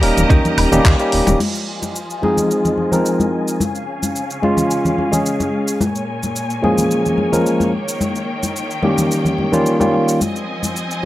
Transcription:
Already playing: string section C#4 G4 D#5 A#5
0.01 analog synth bass D#1, tine electric piano G3 A#3 C#4 D#4 A#4, open hi-hat
0.17 analog synth bass D#1, closed hi-hat, low conga, shaker
0.30 analog synth bass D#2, clean electric guitar C#4 D#4 G4 A#4, kick, closed hi-hat, shaker
0.45 closed hi-hat, low conga, shaker
0.58 analog synth bass D#1, open hi-hat, high woodblock
0.72 analog synth bass D#1, tine electric piano G3 A#3 C#4 D#4 G4, closed hi-hat, low conga, shaker
0.85 analog synth bass D#2, kick, clap, closed hi-hat, shaker
0.99 tine electric piano G3 A#3 C#4 D#4 G4, closed hi-hat, shaker
1.12 analog synth bass D#1, open hi-hat
1.27 analog synth bass D#1, muted clean electric guitar stroke, closed hi-hat, high conga, shaker
1.40 string section F3 F4 D#5 G#5, crash, high conga, shaker
1.55 shaker
1.82 high conga, shaker
1.96 shaker
2.10 shaker
2.22 tine electric piano F3 G#3 C4 D#4 G#4, high conga
2.37 low conga, shaker
2.51 shaker
2.65 low conga, shaker
2.77 high conga
2.91 tine electric piano F3 G#3 C4 D#4 A#4, low conga, shaker
3.06 shaker
3.20 high conga, shaker
3.48 shaker
3.60 string section C#3 C#4 F5, high conga, shaker
3.75 shaker
4.03 high conga, shaker
4.16 shaker
4.30 shaker
4.42 tine electric piano G#3 C#4 F4, high conga
4.57 low conga, shaker
4.71 shaker
4.85 low conga, shaker
4.98 high conga
5.11 tine electric piano G#3 C#4 G#4, low conga, shaker
5.26 shaker
5.40 high conga, shaker
5.68 shaker
5.81 string section A#2 A#3 C#5 G#5, high conga, shaker
5.95 shaker
6.23 high conga, shaker
6.36 shaker
6.50 shaker
6.62 tine electric piano F3 G#3 A#3 C#4 G#4, high conga
6.78 low conga, shaker
6.91 shaker
7.06 low conga, shaker
7.18 high conga
7.32 tine electric piano F3 G#3 A#3 C#4 A#4, low conga, shaker
7.46 shaker
7.60 high conga, shaker
7.73 string section D#3 G5
7.88 shaker
8.01 high conga, shaker
8.16 shaker
8.43 high conga, shaker
8.56 shaker
8.71 shaker
8.82 tine electric piano D#3 G3 A#3 C#4 G4, high conga
8.98 low conga, shaker
9.11 shaker
9.25 low conga, shaker
9.38 high conga
9.52 tine electric piano D#3 G3 A#3 C#4 F4, low conga, shaker
9.66 shaker
9.79 tine electric piano D#3 G3 A#3 C#4 F4, high conga, shaker
10.08 shaker
10.21 string section F3 C4 D#5 G#5, high conga, shaker
10.36 shaker
10.63 high conga, shaker
10.76 shaker
10.91 shaker

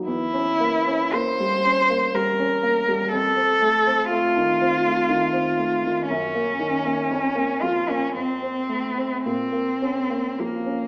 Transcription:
0.07 grand piano E2, cello E4
0.34 grand piano C#4
0.60 grand piano A#3
0.87 grand piano C#4
1.13 grand piano A#3, cello C5
1.40 grand piano G3
1.65 grand piano C#4
1.90 grand piano A#3
2.14 grand piano G3, cello A#4
2.39 grand piano C#4
2.63 grand piano A#3
2.88 grand piano G3
3.12 grand piano F2, cello A4
3.36 grand piano C4
3.61 grand piano A3
3.86 grand piano C4
4.11 grand piano A3, cello F4
4.37 grand piano D#3
4.61 grand piano C4
4.86 grand piano A3
5.09 grand piano D#3
5.33 grand piano C4
5.59 grand piano A3
5.85 grand piano D#3
6.08 grand piano F#2, cello C#4
6.35 grand piano A#3
6.59 grand piano D#3
6.85 grand piano A#3
7.10 grand piano F2
7.35 grand piano A#3
7.62 grand piano F3, cello F4
7.89 grand piano A#3, cello C#4
8.16 grand piano F2, cello C4
8.42 grand piano C4
8.69 grand piano A3
8.97 grand piano C4
9.26 grand piano A#2, cello C4
9.52 grand piano A#3
9.82 grand piano C#4
10.10 grand piano A#3
10.39 grand piano F3, cello A#3
10.66 grand piano C#4

